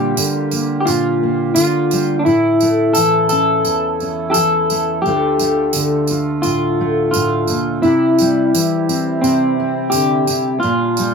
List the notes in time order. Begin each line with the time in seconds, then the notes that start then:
Already playing: A#2 D3 G3 A#3 F4 G4
0.17 D3, tambourine
0.51 A#3, tambourine
0.81 G4
0.85 A#2 F4, tambourine
1.23 A#3
1.55 D3 F4, tambourine
1.91 G3, tambourine
2.19 D4
2.25 A2 C#3 A3 E4 A4, tambourine
2.60 A3, tambourine
2.93 E3 A4, tambourine
3.29 C#4 A4, tambourine
3.65 E2, tambourine
4.00 C#4, tambourine
4.30 G4 A4
4.34 E3, tambourine
4.70 A3, tambourine
5.02 D2 D3 F4 G4, tambourine
5.06 D3 A3 F4
5.39 A3, tambourine
5.73 D3, tambourine
6.07 F4, tambourine
6.42 A2 F4, tambourine
6.81 A3
7.11 F4, tambourine
7.16 A2
7.47 A#2, tambourine
7.82 C3 G3 E4 G4, tambourine
8.19 G3, tambourine
8.54 E3, tambourine
8.89 C4, tambourine
9.22 C3 C4, tambourine
9.60 C4
9.90 D3 G4, tambourine
10.27 C3, tambourine
10.60 A#2 D4 F4, tambourine
10.64 A#2
10.97 G3, tambourine